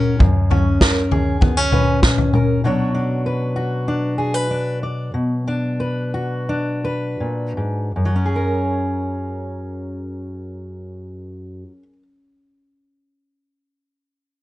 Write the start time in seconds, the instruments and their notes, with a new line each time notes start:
Already playing: upright bass F#2, steel-string acoustic guitar F#2 F#3 C#4 G#4 A#4
0.19 steel-string acoustic guitar F#2, kick, floor tom
0.50 steel-string acoustic guitar C#4, floor tom
0.81 steel-string acoustic guitar A#4, kick, snare
1.11 steel-string acoustic guitar G#4, floor tom
1.41 steel-string acoustic guitar B3, kick, floor tom
1.57 steel-string acoustic guitar C#4
1.72 steel-string acoustic guitar B4, floor tom, mid tom
2.03 steel-string acoustic guitar C#4, kick, snare, mid tom
2.18 floor tom
2.33 steel-string acoustic guitar A#4, mid tom
2.64 steel-string acoustic guitar B2 F#3 D4 F#4 C#5
2.94 steel-string acoustic guitar D4
3.26 steel-string acoustic guitar B4
3.56 steel-string acoustic guitar F#4
3.88 steel-string acoustic guitar D4
4.18 steel-string acoustic guitar G#4
4.34 steel-string acoustic guitar B4
4.51 steel-string acoustic guitar D4
4.83 steel-string acoustic guitar D5
5.14 steel-string acoustic guitar B2
5.48 steel-string acoustic guitar D4
5.80 steel-string acoustic guitar B4
6.14 steel-string acoustic guitar F#4
6.49 steel-string acoustic guitar D4
6.84 steel-string acoustic guitar B4
7.20 steel-string acoustic guitar A#2
7.57 steel-string acoustic guitar G#2
7.96 steel-string acoustic guitar F#2
8.05 steel-string acoustic guitar F#3
8.16 steel-string acoustic guitar C#4
8.26 steel-string acoustic guitar G#4
8.36 steel-string acoustic guitar A#4